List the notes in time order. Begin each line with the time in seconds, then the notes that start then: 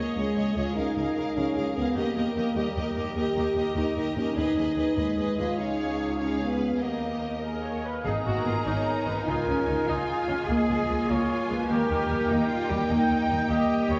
Already playing: A#3 G#4 C#5 D#5
0.16 C#2 G#3 G#4 C#5 D#5
0.36 C#2 G#4 C#5 D#5
0.56 C#2 F4 G#4 C#5 D#5
0.75 C#2 D#4 G#4 A#4 F5
0.95 C#2 G#4 A#4 F5
1.16 C#2 G#4 A#4 F5
1.36 C#2 C#4 G#4 A#4 F5
1.56 C#2 G#4 A#4 F5
1.74 C#2 B3 G#4 A#4 F5
1.95 D#2 A#3 G4 A#4 D#5
2.16 D#2 G4 A#4 D#5
2.36 D#2 G4 A#4 D#5
2.56 D#2 G3 G4 A#4 D#5
2.75 D#2 G4 A#4 D#5
2.95 D#2 G4 A#4 D#5
3.16 D#2 G4 A#4 D#5
3.35 D#2 G4 A#4 D#5
3.54 D#2 G4 A#4 D#5
3.76 D#2 D#4 G4 A#4 D#5
3.96 D#2 G4 A#4 D#5
4.16 D#2 C#4 G4 A#4 D#5
4.37 D#2 D#4 G#4 B4 D#5
4.56 D#2 G#4 B4 D#5
4.77 D#2 G#4 B4 D#5
4.97 D#2 G#3 G#4 B4 D#5
5.17 D#2 G#4 B4 D#5
5.37 D#2 F4 G#4 B4 D#5
5.58 C#2 D#4 G#4 C#5 F5
6.19 C#4 G#4 C#5 F5
6.41 B3
6.51 B4
6.81 D#2 A#3 G4 A#4 D#5
7.44 G#4 A#4
7.64 C#5
7.85 B4 F5
8.05 G#1 B3 D#4 G#4 A#4 D#5 A#5
8.25 G#1 A#3 F#4
8.45 G#1 B3 F4
8.65 G#1 D#4 C#5
9.06 G#1 B3 B4
9.26 C#2 G#3 D#4 F4 A#4 G#5
9.47 C#2 G#3 C#4
9.67 C#2 C#4 D#4
9.87 C#2 D#4 F4 G#4
10.28 C#2 C#4 F5
10.48 C#2 A#3 G#4 A#4 D#5
10.69 C#2 F3
10.89 C#2 G#3
11.08 C#2 A#3 F4 C#5
11.49 C#2 G#3 B4
11.69 D#2 G3 A#3 D#4 G4 A#4 G5
11.89 D#2 D#3
12.10 D#2 G3
12.29 D#2 A#3 D#4 G4 G5
12.49 F4
12.69 D#2 G3 G4
12.89 D#2 A#3 D#4 G5
13.09 D#2 D#3
13.29 D#2 G3
13.48 D#2 A#3 G4 D#5
13.89 D#2 G3 C#5